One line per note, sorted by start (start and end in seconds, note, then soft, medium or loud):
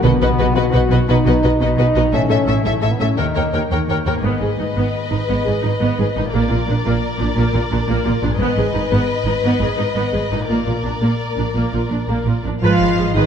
0.02 0.10 B1 medium
0.02 0.11 B2 medium
0.02 2.14 B2 medium
0.02 0.53 B2 medium
0.02 0.55 B3 medium
0.02 0.11 F#4 medium
0.02 0.10 B4 medium
0.02 0.12 D#5 medium
0.21 0.29 B1 medium
0.21 0.28 B2 medium
0.21 0.89 F#3 soft
0.21 0.29 F#4 medium
0.21 0.28 B4 medium
0.21 0.29 D#5 medium
0.38 0.46 B1 medium
0.38 0.46 B2 medium
0.38 0.72 D#4 medium
0.38 0.46 F#4 medium
0.38 0.45 B4 medium
0.38 0.47 D#5 medium
0.55 0.63 B1 medium
0.55 0.63 B2 medium
0.55 1.08 F#4 loud
0.55 0.63 F#4 medium
0.55 0.62 B4 medium
0.55 1.59 B4 medium
0.55 0.64 D#5 medium
0.72 0.81 B1 medium
0.72 0.79 B2 medium
0.72 1.41 D#4 medium
0.72 0.80 F#4 medium
0.72 0.80 B4 medium
0.72 0.82 D#5 medium
0.90 0.97 B1 medium
0.90 0.98 B2 medium
0.90 1.24 F#3 soft
0.90 0.99 F#4 medium
0.90 0.98 B4 medium
0.90 0.98 D#5 medium
1.08 1.16 B1 medium
1.08 1.16 B2 medium
1.08 2.14 B3 soft
1.08 1.59 D#4 medium
1.08 1.16 F#4 medium
1.08 1.15 B4 medium
1.08 1.16 D#5 medium
1.25 1.33 B1 medium
1.25 1.33 B2 medium
1.25 1.94 F#3 soft
1.25 1.33 F#4 medium
1.25 1.34 B4 medium
1.25 1.34 D#5 medium
1.43 1.51 B1 medium
1.43 1.50 B2 medium
1.43 1.77 D#4 soft
1.43 1.51 F#4 soft
1.43 1.50 B4 soft
1.43 1.51 D#5 medium
1.60 1.68 B1 medium
1.60 1.68 B2 medium
1.60 2.12 D#4 medium
1.60 1.68 F#4 medium
1.60 2.14 B4 medium
1.60 1.68 B4 soft
1.60 1.68 D#5 medium
1.78 1.85 B1 medium
1.78 1.85 B2 medium
1.78 2.14 D#4 soft
1.78 1.85 F#4 medium
1.78 1.86 B4 medium
1.78 1.86 D#5 soft
1.95 2.02 B1 medium
1.95 2.03 B2 medium
1.95 2.14 F#3 soft
1.95 2.02 F#4 soft
1.95 2.03 B4 soft
1.95 2.02 D#5 soft
2.12 2.19 A1 medium
2.12 3.20 A2 medium
2.12 2.20 A2 medium
2.12 2.66 C#4 medium
2.12 2.19 A4 medium
2.12 2.20 E5 medium
2.12 2.21 E5 medium
2.29 2.36 A1 medium
2.29 2.38 A2 medium
2.29 2.99 A3 soft
2.29 2.36 A4 soft
2.29 2.37 E5 soft
2.29 2.38 E5 medium
2.45 2.53 A1 medium
2.45 2.54 A2 medium
2.45 2.81 E4 soft
2.45 2.54 A4 soft
2.45 2.55 E5 soft
2.45 2.56 E5 soft
2.63 2.71 A1 medium
2.63 2.72 A2 medium
2.63 2.90 A3 medium
2.63 2.72 A4 soft
2.63 2.72 E5 soft
2.63 3.20 E5 soft
2.63 2.73 E5 medium
2.80 2.90 A1 medium
2.80 2.90 A2 soft
2.80 3.20 E4 soft
2.80 2.88 A4 soft
2.80 2.90 E5 soft
2.80 2.91 E5 soft
2.90 3.00 B3 medium
2.98 3.07 A1 soft
2.98 3.07 A2 medium
2.98 3.20 A3 soft
2.98 3.17 C#4 medium
2.98 3.07 A4 soft
2.98 3.07 E5 soft
2.98 3.08 E5 soft
3.17 3.25 D#2 medium
3.17 4.26 D#3 medium
3.17 3.71 D#4 medium
3.17 3.25 A#4 soft
3.17 3.25 C#5 soft
3.17 3.25 G5 soft
3.35 3.43 D#2 medium
3.35 3.43 D#2 soft
3.35 4.05 A#3 soft
3.35 3.43 A#4 soft
3.35 3.42 C#5 soft
3.35 3.44 G5 soft
3.53 3.60 D#2 soft
3.53 3.61 D#2 medium
3.53 3.87 G4 soft
3.53 3.60 A#4 soft
3.53 3.60 C#5 soft
3.53 3.61 G5 soft
3.71 3.78 D#2 soft
3.71 3.78 D#2 medium
3.71 3.79 A#4 soft
3.71 3.78 C#5 soft
3.71 4.26 C#5 soft
3.71 3.79 G5 soft
3.88 3.96 D#2 soft
3.88 4.26 G4 soft
3.88 3.97 A#4 soft
3.88 3.97 C#5 soft
3.88 3.97 G5 soft
4.05 4.13 D#2 soft
4.05 4.13 D#2 medium
4.05 6.26 G#2 soft
4.05 4.26 A#3 soft
4.05 4.14 A#4 soft
4.05 4.13 C#5 soft
4.05 4.13 G5 soft
4.11 6.28 B3 soft
4.15 6.30 G#4 soft
4.20 4.30 G#1 soft
4.20 4.30 G#2 soft
4.20 6.28 B4 soft
4.20 6.32 D#5 soft
4.20 6.29 D#5 soft
4.25 4.41 B3 medium
4.40 4.48 G#1 soft
4.40 4.49 G#2 soft
4.40 4.48 G#4 soft
4.59 4.66 G#1 soft
4.59 4.66 G#2 soft
4.59 4.66 D#4 soft
4.76 4.83 G#1 soft
4.76 4.84 G#2 soft
4.76 4.93 B3 soft
5.11 5.19 G#1 soft
5.11 5.19 G#2 soft
5.11 5.18 D#4 soft
5.29 5.36 G#1 soft
5.29 5.36 G#2 soft
5.29 5.45 B3 soft
5.45 5.54 G#1 soft
5.45 5.54 G#2 soft
5.45 5.52 G#4 soft
5.62 5.71 G#1 soft
5.62 5.72 G#2 soft
5.62 5.69 D#4 soft
5.80 5.88 G#1 medium
5.80 5.88 G#2 medium
5.80 5.97 B3 medium
5.99 6.06 G#1 soft
5.99 6.06 G#2 soft
5.99 6.06 G#4 soft
6.16 6.23 G#1 soft
6.16 6.23 G#2 soft
6.16 8.32 A#2 soft
6.16 6.24 D#4 soft
6.20 8.35 A#3 soft
6.25 8.37 F4 soft
6.29 6.50 A#3 medium
6.29 8.36 A#4 soft
6.29 8.39 D5 soft
6.33 6.41 A#1 medium
6.33 6.40 A#2 medium
6.33 8.36 D5 medium
6.50 6.58 A#1 soft
6.50 6.57 A#2 soft
6.50 6.58 F4 soft
6.68 6.76 A#1 soft
6.68 6.75 A#2 soft
6.68 6.76 D4 soft
6.86 6.93 A#1 medium
6.86 6.93 A#2 medium
6.86 7.02 A#3 medium
7.21 7.28 A#1 soft
7.21 7.27 A#2 soft
7.21 7.28 D4 soft
7.36 7.44 A#1 medium
7.36 7.43 A#2 medium
7.36 7.53 A#3 medium
7.54 7.61 A#1 soft
7.54 7.61 A#2 soft
7.54 7.62 F4 medium
7.72 7.78 A#1 soft
7.72 7.78 A#2 soft
7.72 7.79 D4 soft
7.88 7.95 A#1 medium
7.88 7.96 A#2 medium
7.88 8.05 A#3 medium
8.05 8.12 A#1 soft
8.05 8.13 A#2 soft
8.05 8.12 F4 medium
8.22 8.30 A#1 soft
8.22 10.41 G#2 medium
8.22 8.30 A#2 soft
8.22 8.30 D4 soft
8.26 10.43 B3 soft
8.31 10.45 G#4 soft
8.35 10.47 D#5 soft
8.39 8.47 G#1 medium
8.39 8.46 G#2 medium
8.39 8.56 B3 medium
8.39 10.44 B4 medium
8.39 10.44 D#5 medium
8.57 8.64 G#1 soft
8.57 8.64 G#2 soft
8.57 8.65 G#4 soft
8.74 8.81 G#1 soft
8.74 8.81 G#2 soft
8.74 8.81 D#4 soft
8.91 8.98 G#1 medium
8.91 8.98 G#2 medium
8.91 9.07 B3 medium
9.25 9.32 G#1 soft
9.25 9.33 G#2 soft
9.25 9.33 D#4 soft
9.43 9.50 G#1 medium
9.43 9.50 G#2 medium
9.43 9.60 B3 medium
9.60 9.67 G#1 soft
9.60 9.67 G#2 soft
9.60 9.67 G#4 soft
9.77 9.85 G#1 soft
9.77 9.84 G#2 soft
9.77 9.85 D#4 soft
9.95 10.03 G#1 medium
9.95 10.02 G#2 medium
9.95 10.12 B3 medium
10.13 10.20 G#1 soft
10.13 10.21 G#2 soft
10.13 10.20 G#4 soft
10.31 10.38 G#1 soft
10.31 10.39 G#2 soft
10.31 12.54 A#2 soft
10.31 10.39 D#4 soft
10.36 12.56 A#3 soft
10.40 12.59 F4 soft
10.45 12.61 D5 soft
10.49 10.56 A#1 soft
10.49 10.56 A#2 soft
10.49 10.66 A#3 soft
10.49 12.41 A#4 soft
10.49 12.44 D5 soft
10.66 10.73 A#1 soft
10.66 10.74 A#2 soft
10.66 10.74 F4 soft
10.84 10.91 A#1 soft
10.84 10.91 A#2 soft
10.84 10.91 D4 soft
11.01 11.09 A#1 soft
11.01 11.10 A#2 soft
11.01 11.18 A#3 soft
11.37 11.45 A#1 soft
11.37 11.45 A#2 soft
11.37 11.45 D4 soft
11.54 11.62 A#1 soft
11.54 11.61 A#2 soft
11.54 11.72 A#3 soft
11.73 11.80 A#1 soft
11.73 11.80 A#2 soft
11.73 11.80 F4 soft
11.89 11.97 A#1 soft
11.89 11.97 A#2 soft
11.89 11.98 D4 soft
12.07 12.15 A#1 soft
12.07 12.15 A#2 soft
12.07 12.25 A#3 soft
12.25 12.32 A#1 soft
12.25 12.33 A#2 soft
12.25 12.34 F4 soft
12.44 12.51 A#1 soft
12.44 12.51 A#2 soft
12.44 12.52 D4 soft
12.61 12.69 G#1 medium
12.61 13.26 G#2 medium
12.61 13.10 F3 medium
12.61 12.79 G#3 medium
12.61 13.16 F4 medium
12.61 12.79 B4 medium
12.61 13.26 D#5 medium
12.61 13.11 F5 medium
12.79 12.87 G#1 soft
12.79 12.87 G#3 soft
12.79 13.26 B3 soft
12.79 12.88 B4 soft
12.97 13.04 G#1 soft
12.97 13.05 G#3 soft
12.97 13.05 G#4 soft
12.97 13.26 D#5 soft
13.14 13.21 G#1 medium
13.14 13.26 D#3 medium
13.14 13.26 G#3 medium
13.14 13.26 D#4 medium
13.14 13.26 B4 soft
13.14 13.26 B4 medium
13.14 13.26 D#5 medium